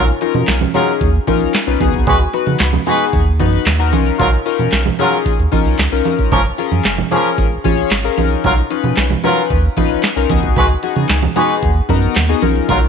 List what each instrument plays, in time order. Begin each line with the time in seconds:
Already playing: analog synth bass B1, analog polysynth C#4 D#4 F4 A#4
0.09 closed hi-hat
0.21 analog polysynth C#4 D#4 F4 A#4, closed hi-hat, muted conga
0.34 analog synth bass B2, closed hi-hat, high conga
0.47 analog synth bass B1, snare, clap, closed hi-hat, muted conga
0.61 high conga, low conga
0.74 horn section F#3 F4 A#4, analog polysynth C#4 D#4 F4 G#4, closed hi-hat, muted conga, high conga, low conga
0.87 closed hi-hat
1.01 analog synth bass D#2, kick, closed hi-hat, muted conga
1.27 analog synth bass A#1, analog polysynth C#4 D#4 F4 A#4, kick, closed hi-hat, muted conga, high conga
1.41 closed hi-hat
1.54 snare, clap, closed hi-hat
1.67 analog synth bass B1, analog polysynth C#4 D#4 F4 B4
1.80 analog synth bass C#2, analog polysynth B3 D#4 F#4 G#4, kick, closed hi-hat, high conga
1.94 analog synth bass C2, kick, closed hi-hat
2.07 analog synth bass C#2, horn section G#3 F#4 B4, kick, closed hi-hat, muted conga, low conga
2.21 closed hi-hat
2.33 analog polysynth B3 D#4 F#4 B4, closed hi-hat, muted conga
2.46 analog synth bass C#3, closed hi-hat, high conga
2.59 analog synth bass C#2, snare, clap, closed hi-hat, muted conga
2.73 high conga, low conga
2.86 horn section G#3 F#4 B4, analog polysynth B3 D#4 F#4 G#4, closed hi-hat, muted conga, high conga, low conga
3.00 closed hi-hat
3.13 analog synth bass D#2, kick, closed hi-hat
3.40 analog synth bass F#2, analog polysynth B3 D#4 F#4 B4, kick, closed hi-hat, high conga
3.53 closed hi-hat
3.66 analog synth bass D#2, snare, clap, closed hi-hat, muted conga
3.79 analog polysynth B3 D#4 F#4 A#4
3.93 analog synth bass B1, analog polysynth C#4 D#4 F4 A#4, closed hi-hat, muted conga, high conga
4.06 closed hi-hat
4.19 analog synth bass B1, horn section F#3 F4 A#4, kick, closed hi-hat, muted conga, low conga
4.33 closed hi-hat
4.46 analog polysynth C#4 D#4 F4 A#4, closed hi-hat
4.59 analog synth bass B2, closed hi-hat, high conga
4.72 analog synth bass B1, snare, clap, closed hi-hat, muted conga
4.86 closed hi-hat, high conga, low conga
4.99 horn section F#3 F4 A#4, analog polysynth C#4 D#4 F4 G#4, closed hi-hat, high conga, low conga
5.12 closed hi-hat
5.26 kick, closed hi-hat, muted conga
5.39 analog synth bass D#2, closed hi-hat
5.52 analog synth bass A#1, analog polysynth C#4 D#4 F4 A#4, kick, closed hi-hat, high conga
5.65 analog synth bass B1, closed hi-hat
5.79 analog synth bass C#2, snare, clap, closed hi-hat, muted conga
5.92 analog synth bass B1, analog polysynth C#4 D#4 F4 A#4, closed hi-hat
6.05 open hi-hat, high conga
6.19 analog synth bass A#1, kick, closed hi-hat
6.32 analog synth bass F#1, horn section F3 C#4 A#4, kick, closed hi-hat, muted conga, low conga
6.46 closed hi-hat
6.58 analog polysynth C#4 F4 G#4 A#4, closed hi-hat, muted conga
6.72 analog synth bass F#2, closed hi-hat, high conga
6.84 analog synth bass F#1, snare, clap, closed hi-hat, muted conga
6.98 high conga, low conga
7.11 horn section F3 C#4 A#4, analog polysynth C#4 F4 G#4 A#4, closed hi-hat, high conga, low conga
7.24 closed hi-hat
7.38 analog synth bass G#1, kick, closed hi-hat, muted conga
7.64 analog synth bass A#1, analog polysynth C#4 F4 G#4 C#5, kick, closed hi-hat, muted conga, high conga
7.78 closed hi-hat
7.91 analog synth bass G#1, snare, clap, closed hi-hat
8.04 analog polysynth C#4 F4 G#4 A#4
8.18 analog synth bass B1, analog polysynth C#4 D#4 F4 A#4, closed hi-hat, muted conga, high conga
8.31 closed hi-hat
8.44 analog synth bass B1, horn section F#3 F4 A#4, kick, closed hi-hat, muted conga, low conga
8.58 closed hi-hat
8.70 analog polysynth C#4 D#4 F4 B4, closed hi-hat, muted conga
8.84 analog synth bass B2, closed hi-hat, high conga
8.96 analog synth bass B1, snare, clap, closed hi-hat, muted conga
9.11 high conga, low conga
9.24 horn section F#3 F4 A#4, analog polysynth C#4 D#4 F4 B4, closed hi-hat, muted conga, high conga, low conga
9.37 closed hi-hat
9.50 analog synth bass D#2, kick, closed hi-hat
9.77 analog synth bass A#1, analog polysynth C#4 D#4 F4 B4, kick, closed hi-hat, muted conga, high conga
9.90 closed hi-hat
10.03 snare, clap, closed hi-hat
10.16 analog synth bass B1, analog polysynth C#4 D#4 F4 A#4
10.30 analog synth bass C#2, analog polysynth B3 D#4 F#4 G#4, kick, closed hi-hat, high conga
10.43 analog synth bass C2, kick, closed hi-hat
10.56 analog synth bass C#2, horn section G#3 F#4 B4, kick, closed hi-hat, low conga
10.70 closed hi-hat
10.83 analog polysynth B3 D#4 F#4 G#4, closed hi-hat, muted conga
10.96 analog synth bass C#3, closed hi-hat, high conga
11.09 analog synth bass C#2, snare, clap, closed hi-hat, muted conga
11.23 high conga, low conga
11.36 horn section G#3 F#4 B4, analog polysynth B3 D#4 F#4 G#4, closed hi-hat, muted conga, high conga, low conga
11.49 closed hi-hat
11.63 analog synth bass D#2, kick, closed hi-hat
11.89 analog synth bass F#2, analog polysynth B3 D#4 F#4 A#4, kick, closed hi-hat, muted conga, high conga
12.02 closed hi-hat
12.16 analog synth bass D#2, snare, clap, closed hi-hat, muted conga
12.29 analog polysynth B3 D#4 F#4 G#4
12.42 analog synth bass B1, analog polysynth C#4 D#4 F4 A#4, closed hi-hat, muted conga, high conga
12.56 closed hi-hat
12.69 analog synth bass B1, horn section F#3 F4 A#4, kick, closed hi-hat, low conga
12.83 closed hi-hat